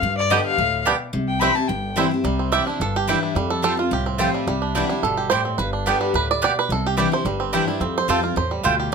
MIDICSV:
0, 0, Header, 1, 6, 480
1, 0, Start_track
1, 0, Key_signature, 0, "major"
1, 0, Tempo, 277906
1, 57, Time_signature, 4, 2, 24, 8
1, 15452, End_track
2, 0, Start_track
2, 0, Title_t, "Fiddle"
2, 0, Program_c, 0, 110
2, 0, Note_on_c, 0, 77, 100
2, 289, Note_off_c, 0, 77, 0
2, 299, Note_on_c, 0, 74, 108
2, 529, Note_on_c, 0, 75, 90
2, 555, Note_off_c, 0, 74, 0
2, 780, Note_off_c, 0, 75, 0
2, 791, Note_on_c, 0, 77, 95
2, 1447, Note_off_c, 0, 77, 0
2, 2210, Note_on_c, 0, 79, 91
2, 2412, Note_on_c, 0, 83, 102
2, 2438, Note_off_c, 0, 79, 0
2, 2679, Note_on_c, 0, 81, 94
2, 2705, Note_off_c, 0, 83, 0
2, 2901, Note_on_c, 0, 79, 84
2, 2927, Note_off_c, 0, 81, 0
2, 3394, Note_off_c, 0, 79, 0
2, 15452, End_track
3, 0, Start_track
3, 0, Title_t, "Mandolin"
3, 0, Program_c, 1, 25
3, 524, Note_on_c, 1, 59, 90
3, 531, Note_on_c, 1, 67, 93
3, 534, Note_on_c, 1, 74, 103
3, 544, Note_on_c, 1, 79, 96
3, 690, Note_off_c, 1, 59, 0
3, 693, Note_off_c, 1, 67, 0
3, 695, Note_off_c, 1, 74, 0
3, 700, Note_off_c, 1, 79, 0
3, 1475, Note_on_c, 1, 59, 89
3, 1480, Note_on_c, 1, 67, 92
3, 1490, Note_on_c, 1, 74, 101
3, 1494, Note_on_c, 1, 79, 105
3, 1644, Note_off_c, 1, 59, 0
3, 1646, Note_off_c, 1, 67, 0
3, 1651, Note_off_c, 1, 74, 0
3, 1653, Note_off_c, 1, 79, 0
3, 2431, Note_on_c, 1, 60, 89
3, 2436, Note_on_c, 1, 64, 95
3, 2444, Note_on_c, 1, 72, 93
3, 2447, Note_on_c, 1, 79, 95
3, 2600, Note_off_c, 1, 60, 0
3, 2603, Note_off_c, 1, 64, 0
3, 2607, Note_off_c, 1, 72, 0
3, 2609, Note_off_c, 1, 79, 0
3, 3389, Note_on_c, 1, 60, 88
3, 3398, Note_on_c, 1, 64, 100
3, 3406, Note_on_c, 1, 72, 103
3, 3408, Note_on_c, 1, 79, 107
3, 3558, Note_off_c, 1, 60, 0
3, 3563, Note_off_c, 1, 64, 0
3, 3567, Note_off_c, 1, 72, 0
3, 3568, Note_off_c, 1, 79, 0
3, 4348, Note_on_c, 1, 60, 89
3, 4359, Note_on_c, 1, 64, 91
3, 4364, Note_on_c, 1, 74, 88
3, 4371, Note_on_c, 1, 79, 101
3, 4517, Note_off_c, 1, 60, 0
3, 4522, Note_off_c, 1, 64, 0
3, 4525, Note_off_c, 1, 74, 0
3, 4528, Note_off_c, 1, 79, 0
3, 5313, Note_on_c, 1, 60, 92
3, 5325, Note_on_c, 1, 64, 101
3, 5328, Note_on_c, 1, 74, 104
3, 5336, Note_on_c, 1, 79, 108
3, 5479, Note_off_c, 1, 60, 0
3, 5485, Note_off_c, 1, 64, 0
3, 5486, Note_off_c, 1, 74, 0
3, 5490, Note_off_c, 1, 79, 0
3, 6271, Note_on_c, 1, 57, 91
3, 6279, Note_on_c, 1, 65, 91
3, 6284, Note_on_c, 1, 72, 95
3, 6291, Note_on_c, 1, 79, 96
3, 6437, Note_off_c, 1, 57, 0
3, 6442, Note_off_c, 1, 65, 0
3, 6444, Note_off_c, 1, 72, 0
3, 6447, Note_off_c, 1, 79, 0
3, 7225, Note_on_c, 1, 57, 93
3, 7234, Note_on_c, 1, 65, 92
3, 7236, Note_on_c, 1, 72, 99
3, 7242, Note_on_c, 1, 79, 113
3, 7394, Note_off_c, 1, 57, 0
3, 7399, Note_off_c, 1, 65, 0
3, 7400, Note_off_c, 1, 72, 0
3, 7403, Note_off_c, 1, 79, 0
3, 8201, Note_on_c, 1, 60, 85
3, 8208, Note_on_c, 1, 64, 87
3, 8212, Note_on_c, 1, 74, 95
3, 8221, Note_on_c, 1, 79, 96
3, 8363, Note_off_c, 1, 60, 0
3, 8366, Note_off_c, 1, 64, 0
3, 8369, Note_off_c, 1, 74, 0
3, 8373, Note_off_c, 1, 79, 0
3, 9166, Note_on_c, 1, 60, 85
3, 9171, Note_on_c, 1, 64, 94
3, 9177, Note_on_c, 1, 74, 93
3, 9187, Note_on_c, 1, 79, 105
3, 9326, Note_off_c, 1, 60, 0
3, 9329, Note_off_c, 1, 64, 0
3, 9332, Note_off_c, 1, 74, 0
3, 9337, Note_off_c, 1, 79, 0
3, 10121, Note_on_c, 1, 59, 94
3, 10130, Note_on_c, 1, 67, 91
3, 10139, Note_on_c, 1, 74, 89
3, 10144, Note_on_c, 1, 79, 99
3, 10284, Note_off_c, 1, 59, 0
3, 10289, Note_off_c, 1, 67, 0
3, 10293, Note_off_c, 1, 74, 0
3, 10296, Note_off_c, 1, 79, 0
3, 11084, Note_on_c, 1, 59, 93
3, 11090, Note_on_c, 1, 67, 98
3, 11097, Note_on_c, 1, 74, 108
3, 11099, Note_on_c, 1, 79, 91
3, 11247, Note_off_c, 1, 59, 0
3, 11250, Note_off_c, 1, 67, 0
3, 11254, Note_off_c, 1, 74, 0
3, 11255, Note_off_c, 1, 79, 0
3, 12035, Note_on_c, 1, 60, 80
3, 12046, Note_on_c, 1, 64, 90
3, 12052, Note_on_c, 1, 74, 94
3, 12056, Note_on_c, 1, 79, 97
3, 12204, Note_off_c, 1, 60, 0
3, 12209, Note_off_c, 1, 64, 0
3, 12213, Note_off_c, 1, 74, 0
3, 12215, Note_off_c, 1, 79, 0
3, 13000, Note_on_c, 1, 60, 96
3, 13006, Note_on_c, 1, 64, 102
3, 13015, Note_on_c, 1, 74, 100
3, 13019, Note_on_c, 1, 79, 99
3, 13168, Note_off_c, 1, 60, 0
3, 13171, Note_off_c, 1, 64, 0
3, 13175, Note_off_c, 1, 74, 0
3, 13178, Note_off_c, 1, 79, 0
3, 13967, Note_on_c, 1, 57, 92
3, 13972, Note_on_c, 1, 65, 100
3, 13980, Note_on_c, 1, 72, 100
3, 13984, Note_on_c, 1, 79, 101
3, 14132, Note_off_c, 1, 57, 0
3, 14135, Note_off_c, 1, 65, 0
3, 14139, Note_off_c, 1, 72, 0
3, 14141, Note_off_c, 1, 79, 0
3, 14914, Note_on_c, 1, 57, 98
3, 14923, Note_on_c, 1, 65, 98
3, 14932, Note_on_c, 1, 72, 99
3, 14936, Note_on_c, 1, 79, 108
3, 15087, Note_off_c, 1, 57, 0
3, 15092, Note_off_c, 1, 65, 0
3, 15096, Note_off_c, 1, 72, 0
3, 15098, Note_off_c, 1, 79, 0
3, 15452, End_track
4, 0, Start_track
4, 0, Title_t, "Five-string banjo"
4, 0, Program_c, 2, 105
4, 539, Note_on_c, 2, 55, 62
4, 548, Note_on_c, 2, 59, 59
4, 552, Note_on_c, 2, 62, 64
4, 647, Note_off_c, 2, 55, 0
4, 650, Note_off_c, 2, 59, 0
4, 653, Note_off_c, 2, 62, 0
4, 1496, Note_on_c, 2, 55, 70
4, 1504, Note_on_c, 2, 59, 67
4, 1507, Note_on_c, 2, 62, 72
4, 1605, Note_off_c, 2, 55, 0
4, 1605, Note_off_c, 2, 59, 0
4, 1609, Note_off_c, 2, 62, 0
4, 2447, Note_on_c, 2, 55, 62
4, 2460, Note_on_c, 2, 64, 65
4, 2463, Note_on_c, 2, 60, 65
4, 2560, Note_off_c, 2, 55, 0
4, 2562, Note_off_c, 2, 60, 0
4, 2564, Note_off_c, 2, 64, 0
4, 3413, Note_on_c, 2, 55, 64
4, 3421, Note_on_c, 2, 60, 67
4, 3421, Note_on_c, 2, 64, 65
4, 3520, Note_off_c, 2, 55, 0
4, 3522, Note_off_c, 2, 60, 0
4, 3524, Note_off_c, 2, 64, 0
4, 3879, Note_on_c, 2, 55, 78
4, 4135, Note_on_c, 2, 60, 59
4, 4360, Note_on_c, 2, 76, 107
4, 4602, Note_off_c, 2, 76, 0
4, 4609, Note_on_c, 2, 62, 62
4, 4856, Note_off_c, 2, 55, 0
4, 4862, Note_on_c, 2, 69, 89
4, 5109, Note_off_c, 2, 69, 0
4, 5117, Note_on_c, 2, 67, 84
4, 5276, Note_off_c, 2, 62, 0
4, 5342, Note_on_c, 2, 64, 75
4, 5343, Note_off_c, 2, 67, 0
4, 5565, Note_off_c, 2, 64, 0
4, 5577, Note_on_c, 2, 55, 52
4, 5800, Note_off_c, 2, 55, 0
4, 5807, Note_on_c, 2, 55, 77
4, 6052, Note_on_c, 2, 69, 102
4, 6269, Note_off_c, 2, 69, 0
4, 6290, Note_on_c, 2, 69, 109
4, 6539, Note_off_c, 2, 69, 0
4, 6546, Note_on_c, 2, 65, 62
4, 6553, Note_off_c, 2, 60, 0
4, 6598, Note_off_c, 2, 55, 0
4, 6787, Note_on_c, 2, 67, 78
4, 7007, Note_off_c, 2, 67, 0
4, 7016, Note_on_c, 2, 60, 61
4, 7204, Note_off_c, 2, 65, 0
4, 7257, Note_on_c, 2, 67, 62
4, 7502, Note_on_c, 2, 55, 61
4, 7679, Note_off_c, 2, 60, 0
4, 7725, Note_off_c, 2, 55, 0
4, 7731, Note_on_c, 2, 55, 79
4, 7976, Note_on_c, 2, 62, 57
4, 8208, Note_on_c, 2, 50, 57
4, 8447, Note_off_c, 2, 55, 0
4, 8454, Note_on_c, 2, 55, 78
4, 8691, Note_on_c, 2, 69, 87
4, 8743, Note_off_c, 2, 67, 0
4, 8886, Note_off_c, 2, 50, 0
4, 8937, Note_on_c, 2, 67, 62
4, 9142, Note_off_c, 2, 62, 0
4, 9149, Note_on_c, 2, 72, 108
4, 9183, Note_off_c, 2, 69, 0
4, 9415, Note_on_c, 2, 60, 58
4, 9632, Note_off_c, 2, 72, 0
4, 9638, Note_on_c, 2, 71, 86
4, 9646, Note_off_c, 2, 60, 0
4, 9874, Note_off_c, 2, 71, 0
4, 9897, Note_on_c, 2, 62, 54
4, 10137, Note_on_c, 2, 50, 57
4, 10370, Note_off_c, 2, 55, 0
4, 10377, Note_on_c, 2, 55, 72
4, 10563, Note_off_c, 2, 62, 0
4, 10629, Note_on_c, 2, 71, 94
4, 10813, Note_off_c, 2, 50, 0
4, 10875, Note_off_c, 2, 71, 0
4, 10895, Note_on_c, 2, 74, 102
4, 11104, Note_off_c, 2, 74, 0
4, 11125, Note_on_c, 2, 74, 111
4, 11355, Note_off_c, 2, 67, 0
4, 11363, Note_off_c, 2, 74, 0
4, 11379, Note_on_c, 2, 71, 89
4, 11576, Note_off_c, 2, 71, 0
4, 11610, Note_on_c, 2, 69, 94
4, 11662, Note_off_c, 2, 55, 0
4, 11846, Note_off_c, 2, 69, 0
4, 11857, Note_on_c, 2, 67, 85
4, 12027, Note_off_c, 2, 67, 0
4, 12047, Note_on_c, 2, 67, 55
4, 12322, Note_on_c, 2, 72, 80
4, 12528, Note_off_c, 2, 72, 0
4, 12531, Note_on_c, 2, 55, 64
4, 12779, Note_on_c, 2, 60, 65
4, 13001, Note_off_c, 2, 67, 0
4, 13008, Note_on_c, 2, 67, 60
4, 13251, Note_off_c, 2, 55, 0
4, 13258, Note_on_c, 2, 55, 55
4, 13480, Note_off_c, 2, 60, 0
4, 13487, Note_on_c, 2, 60, 65
4, 13777, Note_on_c, 2, 72, 110
4, 13984, Note_off_c, 2, 72, 0
4, 13991, Note_on_c, 2, 69, 95
4, 14043, Note_off_c, 2, 55, 0
4, 14043, Note_off_c, 2, 67, 0
4, 14218, Note_off_c, 2, 69, 0
4, 14225, Note_on_c, 2, 65, 62
4, 14453, Note_off_c, 2, 65, 0
4, 14460, Note_on_c, 2, 72, 87
4, 14691, Note_off_c, 2, 72, 0
4, 14701, Note_on_c, 2, 55, 65
4, 14938, Note_on_c, 2, 65, 59
4, 15192, Note_on_c, 2, 67, 58
4, 15412, Note_off_c, 2, 65, 0
4, 15452, Note_off_c, 2, 55, 0
4, 15452, Note_off_c, 2, 60, 0
4, 15452, Note_off_c, 2, 67, 0
4, 15452, End_track
5, 0, Start_track
5, 0, Title_t, "Steel-string acoustic guitar"
5, 0, Program_c, 3, 25
5, 51, Note_on_c, 3, 43, 87
5, 520, Note_on_c, 3, 50, 96
5, 537, Note_on_c, 3, 55, 97
5, 550, Note_on_c, 3, 59, 95
5, 564, Note_on_c, 3, 67, 93
5, 965, Note_off_c, 3, 43, 0
5, 983, Note_off_c, 3, 50, 0
5, 992, Note_off_c, 3, 55, 0
5, 998, Note_off_c, 3, 59, 0
5, 1006, Note_off_c, 3, 67, 0
5, 1008, Note_on_c, 3, 45, 90
5, 1466, Note_off_c, 3, 45, 0
5, 1496, Note_on_c, 3, 47, 88
5, 1944, Note_off_c, 3, 47, 0
5, 1951, Note_on_c, 3, 48, 93
5, 2437, Note_on_c, 3, 52, 88
5, 2447, Note_on_c, 3, 55, 96
5, 2465, Note_on_c, 3, 60, 100
5, 2475, Note_on_c, 3, 64, 96
5, 2657, Note_off_c, 3, 64, 0
5, 2678, Note_on_c, 3, 64, 62
5, 2681, Note_off_c, 3, 52, 0
5, 2687, Note_off_c, 3, 55, 0
5, 2689, Note_off_c, 3, 60, 0
5, 2709, Note_on_c, 3, 60, 52
5, 2872, Note_off_c, 3, 48, 0
5, 2909, Note_off_c, 3, 64, 0
5, 2920, Note_on_c, 3, 43, 87
5, 2925, Note_off_c, 3, 60, 0
5, 3380, Note_on_c, 3, 52, 91
5, 3400, Note_on_c, 3, 55, 93
5, 3407, Note_on_c, 3, 60, 94
5, 3422, Note_on_c, 3, 64, 96
5, 3628, Note_off_c, 3, 64, 0
5, 3632, Note_off_c, 3, 52, 0
5, 3642, Note_off_c, 3, 55, 0
5, 3645, Note_off_c, 3, 60, 0
5, 3649, Note_on_c, 3, 64, 60
5, 3687, Note_on_c, 3, 60, 52
5, 3836, Note_off_c, 3, 43, 0
5, 3874, Note_off_c, 3, 64, 0
5, 3878, Note_on_c, 3, 48, 90
5, 3893, Note_off_c, 3, 60, 0
5, 4356, Note_on_c, 3, 52, 86
5, 4369, Note_on_c, 3, 55, 93
5, 4386, Note_on_c, 3, 62, 89
5, 4396, Note_on_c, 3, 64, 94
5, 4595, Note_off_c, 3, 64, 0
5, 4599, Note_off_c, 3, 52, 0
5, 4606, Note_off_c, 3, 55, 0
5, 4614, Note_off_c, 3, 62, 0
5, 4615, Note_on_c, 3, 64, 56
5, 4653, Note_on_c, 3, 62, 52
5, 4794, Note_off_c, 3, 48, 0
5, 4836, Note_off_c, 3, 64, 0
5, 4854, Note_on_c, 3, 43, 87
5, 4855, Note_off_c, 3, 62, 0
5, 5311, Note_on_c, 3, 52, 88
5, 5331, Note_on_c, 3, 55, 87
5, 5333, Note_on_c, 3, 62, 98
5, 5350, Note_on_c, 3, 64, 99
5, 5762, Note_off_c, 3, 43, 0
5, 5774, Note_off_c, 3, 52, 0
5, 5784, Note_off_c, 3, 55, 0
5, 5785, Note_off_c, 3, 62, 0
5, 5794, Note_off_c, 3, 64, 0
5, 5807, Note_on_c, 3, 41, 84
5, 6259, Note_on_c, 3, 53, 90
5, 6280, Note_on_c, 3, 55, 89
5, 6292, Note_on_c, 3, 60, 88
5, 6298, Note_on_c, 3, 65, 100
5, 6494, Note_off_c, 3, 65, 0
5, 6510, Note_off_c, 3, 53, 0
5, 6515, Note_on_c, 3, 65, 57
5, 6521, Note_off_c, 3, 55, 0
5, 6526, Note_off_c, 3, 60, 0
5, 6549, Note_on_c, 3, 60, 48
5, 6719, Note_off_c, 3, 41, 0
5, 6746, Note_off_c, 3, 65, 0
5, 6755, Note_on_c, 3, 45, 93
5, 6763, Note_off_c, 3, 60, 0
5, 7231, Note_on_c, 3, 53, 88
5, 7251, Note_on_c, 3, 55, 103
5, 7258, Note_on_c, 3, 60, 100
5, 7273, Note_on_c, 3, 65, 104
5, 7673, Note_off_c, 3, 45, 0
5, 7694, Note_off_c, 3, 53, 0
5, 7704, Note_off_c, 3, 55, 0
5, 7708, Note_off_c, 3, 60, 0
5, 7715, Note_off_c, 3, 65, 0
5, 7728, Note_on_c, 3, 48, 90
5, 8208, Note_on_c, 3, 52, 89
5, 8224, Note_on_c, 3, 55, 92
5, 8239, Note_on_c, 3, 62, 101
5, 8247, Note_on_c, 3, 64, 102
5, 8440, Note_off_c, 3, 64, 0
5, 8445, Note_off_c, 3, 52, 0
5, 8453, Note_off_c, 3, 55, 0
5, 8460, Note_off_c, 3, 62, 0
5, 8461, Note_on_c, 3, 64, 63
5, 8505, Note_on_c, 3, 62, 47
5, 8640, Note_off_c, 3, 48, 0
5, 8679, Note_off_c, 3, 64, 0
5, 8701, Note_off_c, 3, 62, 0
5, 8715, Note_on_c, 3, 47, 83
5, 9157, Note_off_c, 3, 47, 0
5, 9176, Note_on_c, 3, 45, 87
5, 9628, Note_off_c, 3, 45, 0
5, 9656, Note_on_c, 3, 43, 93
5, 10125, Note_on_c, 3, 50, 89
5, 10140, Note_on_c, 3, 55, 100
5, 10156, Note_on_c, 3, 59, 104
5, 10168, Note_on_c, 3, 67, 92
5, 10567, Note_off_c, 3, 43, 0
5, 10584, Note_off_c, 3, 50, 0
5, 10592, Note_off_c, 3, 55, 0
5, 10599, Note_off_c, 3, 59, 0
5, 10605, Note_off_c, 3, 67, 0
5, 10607, Note_on_c, 3, 45, 83
5, 11065, Note_off_c, 3, 45, 0
5, 11088, Note_on_c, 3, 47, 84
5, 11547, Note_off_c, 3, 47, 0
5, 11576, Note_on_c, 3, 48, 88
5, 12044, Note_on_c, 3, 52, 91
5, 12055, Note_on_c, 3, 55, 92
5, 12071, Note_on_c, 3, 62, 98
5, 12085, Note_on_c, 3, 64, 100
5, 12271, Note_off_c, 3, 64, 0
5, 12287, Note_off_c, 3, 52, 0
5, 12292, Note_on_c, 3, 64, 66
5, 12293, Note_off_c, 3, 55, 0
5, 12301, Note_off_c, 3, 62, 0
5, 12332, Note_on_c, 3, 62, 45
5, 12489, Note_off_c, 3, 48, 0
5, 12519, Note_off_c, 3, 64, 0
5, 12529, Note_on_c, 3, 43, 89
5, 12539, Note_off_c, 3, 62, 0
5, 13001, Note_on_c, 3, 52, 86
5, 13017, Note_on_c, 3, 55, 87
5, 13033, Note_on_c, 3, 62, 104
5, 13037, Note_on_c, 3, 64, 98
5, 13243, Note_off_c, 3, 64, 0
5, 13247, Note_off_c, 3, 52, 0
5, 13255, Note_off_c, 3, 55, 0
5, 13263, Note_off_c, 3, 62, 0
5, 13263, Note_on_c, 3, 64, 64
5, 13304, Note_on_c, 3, 62, 50
5, 13447, Note_off_c, 3, 43, 0
5, 13486, Note_off_c, 3, 64, 0
5, 13490, Note_on_c, 3, 41, 89
5, 13507, Note_off_c, 3, 62, 0
5, 13955, Note_on_c, 3, 53, 94
5, 13970, Note_on_c, 3, 55, 101
5, 13988, Note_on_c, 3, 60, 100
5, 13999, Note_on_c, 3, 65, 113
5, 14190, Note_off_c, 3, 65, 0
5, 14205, Note_off_c, 3, 53, 0
5, 14210, Note_on_c, 3, 65, 58
5, 14212, Note_off_c, 3, 55, 0
5, 14221, Note_off_c, 3, 60, 0
5, 14250, Note_on_c, 3, 60, 50
5, 14409, Note_off_c, 3, 41, 0
5, 14441, Note_off_c, 3, 65, 0
5, 14441, Note_on_c, 3, 45, 87
5, 14461, Note_off_c, 3, 60, 0
5, 14907, Note_off_c, 3, 45, 0
5, 14924, Note_on_c, 3, 47, 91
5, 15389, Note_off_c, 3, 47, 0
5, 15452, End_track
6, 0, Start_track
6, 0, Title_t, "Upright bass"
6, 0, Program_c, 4, 32
6, 31, Note_on_c, 4, 43, 102
6, 620, Note_off_c, 4, 43, 0
6, 998, Note_on_c, 4, 38, 86
6, 1584, Note_off_c, 4, 38, 0
6, 1957, Note_on_c, 4, 36, 93
6, 2543, Note_off_c, 4, 36, 0
6, 2918, Note_on_c, 4, 31, 88
6, 3503, Note_off_c, 4, 31, 0
6, 3866, Note_on_c, 4, 36, 97
6, 4455, Note_off_c, 4, 36, 0
6, 4832, Note_on_c, 4, 31, 85
6, 5419, Note_off_c, 4, 31, 0
6, 5789, Note_on_c, 4, 41, 102
6, 6377, Note_off_c, 4, 41, 0
6, 6754, Note_on_c, 4, 36, 87
6, 7341, Note_off_c, 4, 36, 0
6, 7723, Note_on_c, 4, 36, 94
6, 8307, Note_off_c, 4, 36, 0
6, 8682, Note_on_c, 4, 31, 82
6, 9267, Note_off_c, 4, 31, 0
6, 9641, Note_on_c, 4, 31, 93
6, 10227, Note_off_c, 4, 31, 0
6, 10600, Note_on_c, 4, 38, 94
6, 11188, Note_off_c, 4, 38, 0
6, 11557, Note_on_c, 4, 36, 96
6, 12146, Note_off_c, 4, 36, 0
6, 12519, Note_on_c, 4, 31, 93
6, 13108, Note_off_c, 4, 31, 0
6, 13476, Note_on_c, 4, 41, 104
6, 13775, Note_off_c, 4, 41, 0
6, 13967, Note_on_c, 4, 41, 87
6, 14380, Note_off_c, 4, 41, 0
6, 14450, Note_on_c, 4, 40, 89
6, 14862, Note_off_c, 4, 40, 0
6, 14937, Note_on_c, 4, 38, 96
6, 15347, Note_off_c, 4, 38, 0
6, 15452, End_track
0, 0, End_of_file